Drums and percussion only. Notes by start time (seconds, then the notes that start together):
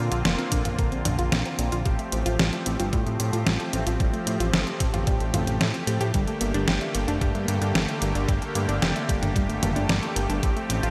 0.12 closed hi-hat
0.25 snare, closed hi-hat
0.39 closed hi-hat
0.52 kick, closed hi-hat
0.65 closed hi-hat, mid tom
0.79 kick, closed hi-hat
0.92 closed hi-hat
1.05 closed hi-hat, mid tom
1.19 closed hi-hat
1.32 snare, closed hi-hat
1.45 closed hi-hat
1.59 closed hi-hat
1.72 closed hi-hat
1.85 kick, closed hi-hat
1.99 closed hi-hat
2.12 closed hi-hat
2.26 closed hi-hat
2.39 snare, closed hi-hat
2.53 closed hi-hat
2.66 closed hi-hat
2.80 closed hi-hat
2.93 kick, closed hi-hat
3.07 closed hi-hat
3.20 closed hi-hat
3.33 closed hi-hat
3.47 snare, closed hi-hat
3.60 closed hi-hat
3.73 closed hi-hat
3.87 closed hi-hat
4.00 kick, closed hi-hat
4.14 closed hi-hat
4.27 closed hi-hat
4.40 closed hi-hat
4.54 snare, closed hi-hat
4.67 closed hi-hat
4.80 kick, closed hi-hat
4.94 closed hi-hat, mid tom
5.07 kick, closed hi-hat
5.20 closed hi-hat
5.34 closed hi-hat, mid tom
5.47 closed hi-hat
5.61 snare, closed hi-hat
5.74 closed hi-hat
5.87 closed hi-hat
6.01 closed hi-hat
6.14 kick, closed hi-hat
6.28 closed hi-hat
6.41 closed hi-hat
6.54 closed hi-hat
6.68 snare, closed hi-hat
6.81 closed hi-hat
6.95 closed hi-hat
7.08 closed hi-hat
7.21 kick, closed hi-hat
7.35 closed hi-hat
7.48 closed hi-hat
7.62 closed hi-hat
7.75 snare, closed hi-hat
7.89 closed hi-hat
8.02 closed hi-hat
8.15 closed hi-hat
8.29 kick, closed hi-hat
8.42 closed hi-hat
8.55 closed hi-hat
8.69 closed hi-hat
8.82 snare, closed hi-hat
8.96 closed hi-hat
9.09 kick, closed hi-hat
9.23 closed hi-hat, mid tom
9.36 kick, closed hi-hat
9.50 closed hi-hat
9.63 closed hi-hat, mid tom
9.76 closed hi-hat
9.89 snare, closed hi-hat
10.03 closed hi-hat
10.16 closed hi-hat
10.30 closed hi-hat
10.43 kick, closed hi-hat
10.57 closed hi-hat
10.70 closed hi-hat
10.83 closed hi-hat